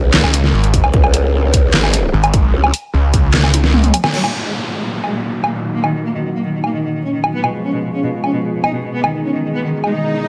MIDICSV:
0, 0, Header, 1, 8, 480
1, 0, Start_track
1, 0, Key_signature, -6, "minor"
1, 0, Tempo, 400000
1, 1124, Time_signature, 4, 2, 24, 8
1, 12336, End_track
2, 0, Start_track
2, 0, Title_t, "Analog synth pad"
2, 0, Program_c, 0, 89
2, 4964, Note_on_c, 0, 46, 78
2, 4964, Note_on_c, 0, 51, 72
2, 4964, Note_on_c, 0, 54, 72
2, 4964, Note_on_c, 0, 63, 73
2, 4964, Note_on_c, 0, 66, 87
2, 8766, Note_off_c, 0, 46, 0
2, 8766, Note_off_c, 0, 51, 0
2, 8766, Note_off_c, 0, 54, 0
2, 8766, Note_off_c, 0, 63, 0
2, 8766, Note_off_c, 0, 66, 0
2, 8804, Note_on_c, 0, 53, 74
2, 8804, Note_on_c, 0, 65, 76
2, 8804, Note_on_c, 0, 68, 92
2, 8805, Note_on_c, 0, 47, 80
2, 8805, Note_on_c, 0, 56, 76
2, 10705, Note_off_c, 0, 53, 0
2, 10705, Note_off_c, 0, 56, 0
2, 10705, Note_off_c, 0, 65, 0
2, 10724, Note_on_c, 0, 56, 77
2, 10724, Note_on_c, 0, 63, 72
2, 10725, Note_on_c, 0, 51, 74
2, 12336, Note_off_c, 0, 47, 0
2, 12336, Note_off_c, 0, 51, 0
2, 12336, Note_off_c, 0, 56, 0
2, 12336, Note_off_c, 0, 63, 0
2, 12336, Note_off_c, 0, 68, 0
2, 12336, End_track
3, 0, Start_track
3, 0, Title_t, "Cello"
3, 0, Program_c, 1, 42
3, 4964, Note_on_c, 1, 54, 84
3, 5036, Note_off_c, 1, 54, 0
3, 5085, Note_on_c, 1, 46, 53
3, 5157, Note_off_c, 1, 46, 0
3, 5204, Note_on_c, 1, 46, 54
3, 5276, Note_off_c, 1, 46, 0
3, 5324, Note_on_c, 1, 56, 80
3, 5396, Note_off_c, 1, 56, 0
3, 5445, Note_on_c, 1, 46, 54
3, 5517, Note_off_c, 1, 46, 0
3, 5565, Note_on_c, 1, 46, 51
3, 5637, Note_off_c, 1, 46, 0
3, 5685, Note_on_c, 1, 56, 77
3, 5757, Note_off_c, 1, 56, 0
3, 5805, Note_on_c, 1, 46, 55
3, 5877, Note_off_c, 1, 46, 0
3, 5924, Note_on_c, 1, 46, 57
3, 5996, Note_off_c, 1, 46, 0
3, 6046, Note_on_c, 1, 56, 82
3, 6117, Note_off_c, 1, 56, 0
3, 6166, Note_on_c, 1, 46, 56
3, 6237, Note_off_c, 1, 46, 0
3, 6287, Note_on_c, 1, 46, 54
3, 6357, Note_off_c, 1, 46, 0
3, 6406, Note_on_c, 1, 46, 55
3, 6477, Note_off_c, 1, 46, 0
3, 6527, Note_on_c, 1, 58, 79
3, 6598, Note_off_c, 1, 58, 0
3, 6648, Note_on_c, 1, 46, 57
3, 6718, Note_off_c, 1, 46, 0
3, 6768, Note_on_c, 1, 46, 56
3, 6838, Note_off_c, 1, 46, 0
3, 6888, Note_on_c, 1, 58, 88
3, 6958, Note_off_c, 1, 58, 0
3, 7006, Note_on_c, 1, 51, 55
3, 7077, Note_off_c, 1, 51, 0
3, 7125, Note_on_c, 1, 51, 57
3, 7197, Note_off_c, 1, 51, 0
3, 7244, Note_on_c, 1, 58, 83
3, 7316, Note_off_c, 1, 58, 0
3, 7365, Note_on_c, 1, 51, 57
3, 7437, Note_off_c, 1, 51, 0
3, 7485, Note_on_c, 1, 51, 52
3, 7557, Note_off_c, 1, 51, 0
3, 7605, Note_on_c, 1, 58, 81
3, 7677, Note_off_c, 1, 58, 0
3, 7725, Note_on_c, 1, 51, 59
3, 7797, Note_off_c, 1, 51, 0
3, 7844, Note_on_c, 1, 51, 58
3, 7916, Note_off_c, 1, 51, 0
3, 7963, Note_on_c, 1, 58, 86
3, 8036, Note_off_c, 1, 58, 0
3, 8082, Note_on_c, 1, 51, 60
3, 8155, Note_off_c, 1, 51, 0
3, 8205, Note_on_c, 1, 51, 56
3, 8277, Note_off_c, 1, 51, 0
3, 8324, Note_on_c, 1, 51, 58
3, 8396, Note_off_c, 1, 51, 0
3, 8442, Note_on_c, 1, 61, 78
3, 8515, Note_off_c, 1, 61, 0
3, 8564, Note_on_c, 1, 51, 57
3, 8636, Note_off_c, 1, 51, 0
3, 8685, Note_on_c, 1, 51, 58
3, 8757, Note_off_c, 1, 51, 0
3, 8802, Note_on_c, 1, 59, 86
3, 8875, Note_off_c, 1, 59, 0
3, 8923, Note_on_c, 1, 47, 57
3, 8995, Note_off_c, 1, 47, 0
3, 9042, Note_on_c, 1, 47, 57
3, 9115, Note_off_c, 1, 47, 0
3, 9164, Note_on_c, 1, 61, 81
3, 9236, Note_off_c, 1, 61, 0
3, 9284, Note_on_c, 1, 47, 57
3, 9356, Note_off_c, 1, 47, 0
3, 9403, Note_on_c, 1, 47, 55
3, 9476, Note_off_c, 1, 47, 0
3, 9522, Note_on_c, 1, 61, 83
3, 9595, Note_off_c, 1, 61, 0
3, 9643, Note_on_c, 1, 47, 58
3, 9716, Note_off_c, 1, 47, 0
3, 9765, Note_on_c, 1, 47, 58
3, 9836, Note_off_c, 1, 47, 0
3, 9884, Note_on_c, 1, 61, 85
3, 9956, Note_off_c, 1, 61, 0
3, 10003, Note_on_c, 1, 47, 60
3, 10076, Note_off_c, 1, 47, 0
3, 10123, Note_on_c, 1, 47, 57
3, 10195, Note_off_c, 1, 47, 0
3, 10241, Note_on_c, 1, 47, 57
3, 10315, Note_off_c, 1, 47, 0
3, 10362, Note_on_c, 1, 63, 81
3, 10435, Note_off_c, 1, 63, 0
3, 10482, Note_on_c, 1, 47, 61
3, 10555, Note_off_c, 1, 47, 0
3, 10602, Note_on_c, 1, 47, 58
3, 10675, Note_off_c, 1, 47, 0
3, 10721, Note_on_c, 1, 59, 92
3, 10795, Note_off_c, 1, 59, 0
3, 10841, Note_on_c, 1, 51, 59
3, 10914, Note_off_c, 1, 51, 0
3, 10962, Note_on_c, 1, 51, 59
3, 11035, Note_off_c, 1, 51, 0
3, 11083, Note_on_c, 1, 61, 84
3, 11156, Note_off_c, 1, 61, 0
3, 11201, Note_on_c, 1, 51, 58
3, 11275, Note_off_c, 1, 51, 0
3, 11322, Note_on_c, 1, 51, 55
3, 11395, Note_off_c, 1, 51, 0
3, 11441, Note_on_c, 1, 59, 84
3, 11514, Note_off_c, 1, 59, 0
3, 11562, Note_on_c, 1, 51, 60
3, 11635, Note_off_c, 1, 51, 0
3, 11680, Note_on_c, 1, 51, 60
3, 11754, Note_off_c, 1, 51, 0
3, 11800, Note_on_c, 1, 56, 85
3, 11874, Note_off_c, 1, 56, 0
3, 11922, Note_on_c, 1, 51, 59
3, 11995, Note_off_c, 1, 51, 0
3, 12041, Note_on_c, 1, 51, 57
3, 12115, Note_off_c, 1, 51, 0
3, 12163, Note_on_c, 1, 51, 61
3, 12235, Note_off_c, 1, 51, 0
3, 12285, Note_on_c, 1, 54, 82
3, 12336, Note_off_c, 1, 54, 0
3, 12336, End_track
4, 0, Start_track
4, 0, Title_t, "Detuned saw bass"
4, 0, Program_c, 2, 39
4, 282, Note_on_c, 2, 37, 97
4, 624, Note_off_c, 2, 37, 0
4, 642, Note_on_c, 2, 32, 95
4, 984, Note_off_c, 2, 32, 0
4, 2562, Note_on_c, 2, 32, 100
4, 3024, Note_off_c, 2, 32, 0
4, 3523, Note_on_c, 2, 37, 97
4, 3744, Note_off_c, 2, 37, 0
4, 3763, Note_on_c, 2, 37, 94
4, 4704, Note_off_c, 2, 37, 0
4, 12336, End_track
5, 0, Start_track
5, 0, Title_t, "Wobble bass"
5, 0, Program_c, 3, 39
5, 0, Note_on_c, 3, 37, 97
5, 265, Note_off_c, 3, 37, 0
5, 1003, Note_on_c, 3, 37, 98
5, 1104, Note_off_c, 3, 37, 0
5, 1123, Note_on_c, 3, 37, 94
5, 2064, Note_off_c, 3, 37, 0
5, 2083, Note_on_c, 3, 32, 95
5, 2544, Note_off_c, 3, 32, 0
5, 3044, Note_on_c, 3, 37, 99
5, 3265, Note_off_c, 3, 37, 0
5, 12336, End_track
6, 0, Start_track
6, 0, Title_t, "Downlifter"
6, 0, Program_c, 4, 103
6, 4964, Note_on_c, 4, 60, 63
6, 8804, Note_off_c, 4, 60, 0
6, 12336, End_track
7, 0, Start_track
7, 0, Title_t, "Swell"
7, 0, Program_c, 5, 103
7, 11684, Note_on_c, 5, 60, 72
7, 12336, Note_off_c, 5, 60, 0
7, 12336, End_track
8, 0, Start_track
8, 0, Title_t, "Drums"
8, 164, Note_on_c, 9, 38, 117
8, 164, Note_on_c, 9, 39, 89
8, 284, Note_off_c, 9, 38, 0
8, 284, Note_off_c, 9, 39, 0
8, 285, Note_on_c, 9, 77, 54
8, 405, Note_off_c, 9, 77, 0
8, 405, Note_on_c, 9, 42, 80
8, 525, Note_off_c, 9, 42, 0
8, 525, Note_on_c, 9, 38, 36
8, 645, Note_off_c, 9, 38, 0
8, 765, Note_on_c, 9, 42, 37
8, 883, Note_on_c, 9, 36, 58
8, 884, Note_off_c, 9, 42, 0
8, 884, Note_on_c, 9, 42, 79
8, 1003, Note_off_c, 9, 36, 0
8, 1004, Note_off_c, 9, 42, 0
8, 1005, Note_on_c, 9, 77, 84
8, 1123, Note_on_c, 9, 36, 115
8, 1125, Note_off_c, 9, 77, 0
8, 1243, Note_off_c, 9, 36, 0
8, 1244, Note_on_c, 9, 77, 78
8, 1364, Note_off_c, 9, 77, 0
8, 1364, Note_on_c, 9, 42, 84
8, 1484, Note_off_c, 9, 42, 0
8, 1843, Note_on_c, 9, 36, 60
8, 1844, Note_on_c, 9, 42, 86
8, 1963, Note_off_c, 9, 36, 0
8, 1964, Note_off_c, 9, 42, 0
8, 2084, Note_on_c, 9, 38, 114
8, 2084, Note_on_c, 9, 39, 94
8, 2203, Note_on_c, 9, 77, 53
8, 2204, Note_off_c, 9, 38, 0
8, 2204, Note_off_c, 9, 39, 0
8, 2323, Note_off_c, 9, 77, 0
8, 2323, Note_on_c, 9, 42, 86
8, 2443, Note_off_c, 9, 42, 0
8, 2683, Note_on_c, 9, 42, 38
8, 2683, Note_on_c, 9, 77, 84
8, 2803, Note_off_c, 9, 42, 0
8, 2803, Note_off_c, 9, 77, 0
8, 2803, Note_on_c, 9, 36, 98
8, 2803, Note_on_c, 9, 42, 83
8, 2923, Note_off_c, 9, 36, 0
8, 2923, Note_off_c, 9, 42, 0
8, 3163, Note_on_c, 9, 77, 82
8, 3283, Note_off_c, 9, 77, 0
8, 3284, Note_on_c, 9, 42, 83
8, 3404, Note_off_c, 9, 42, 0
8, 3764, Note_on_c, 9, 36, 62
8, 3764, Note_on_c, 9, 42, 84
8, 3884, Note_off_c, 9, 36, 0
8, 3884, Note_off_c, 9, 42, 0
8, 4004, Note_on_c, 9, 38, 123
8, 4004, Note_on_c, 9, 39, 97
8, 4124, Note_off_c, 9, 38, 0
8, 4124, Note_off_c, 9, 39, 0
8, 4124, Note_on_c, 9, 77, 51
8, 4244, Note_off_c, 9, 77, 0
8, 4245, Note_on_c, 9, 42, 84
8, 4245, Note_on_c, 9, 48, 62
8, 4365, Note_off_c, 9, 42, 0
8, 4365, Note_off_c, 9, 48, 0
8, 4365, Note_on_c, 9, 38, 61
8, 4485, Note_off_c, 9, 38, 0
8, 4485, Note_on_c, 9, 47, 81
8, 4605, Note_off_c, 9, 47, 0
8, 4605, Note_on_c, 9, 42, 39
8, 4605, Note_on_c, 9, 47, 77
8, 4725, Note_off_c, 9, 42, 0
8, 4725, Note_off_c, 9, 47, 0
8, 4725, Note_on_c, 9, 42, 81
8, 4725, Note_on_c, 9, 77, 62
8, 4845, Note_off_c, 9, 42, 0
8, 4845, Note_off_c, 9, 77, 0
8, 4845, Note_on_c, 9, 38, 93
8, 4845, Note_on_c, 9, 77, 78
8, 4965, Note_off_c, 9, 38, 0
8, 4965, Note_off_c, 9, 77, 0
8, 4965, Note_on_c, 9, 49, 72
8, 5085, Note_off_c, 9, 49, 0
8, 5086, Note_on_c, 9, 77, 64
8, 5206, Note_off_c, 9, 77, 0
8, 6045, Note_on_c, 9, 77, 41
8, 6165, Note_off_c, 9, 77, 0
8, 6525, Note_on_c, 9, 77, 65
8, 6645, Note_off_c, 9, 77, 0
8, 7004, Note_on_c, 9, 77, 63
8, 7124, Note_off_c, 9, 77, 0
8, 7965, Note_on_c, 9, 77, 42
8, 8085, Note_off_c, 9, 77, 0
8, 8685, Note_on_c, 9, 77, 67
8, 8805, Note_off_c, 9, 77, 0
8, 8925, Note_on_c, 9, 77, 68
8, 9045, Note_off_c, 9, 77, 0
8, 9885, Note_on_c, 9, 77, 45
8, 10005, Note_off_c, 9, 77, 0
8, 10365, Note_on_c, 9, 77, 72
8, 10485, Note_off_c, 9, 77, 0
8, 10845, Note_on_c, 9, 77, 74
8, 10965, Note_off_c, 9, 77, 0
8, 11805, Note_on_c, 9, 77, 48
8, 11925, Note_off_c, 9, 77, 0
8, 12336, End_track
0, 0, End_of_file